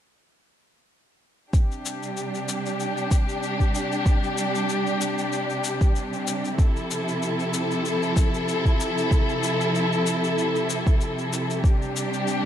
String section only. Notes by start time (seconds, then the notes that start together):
1.53 C3 G3 D4 G4
6.59 F3 E4 A4
11.63 G3 D4 G4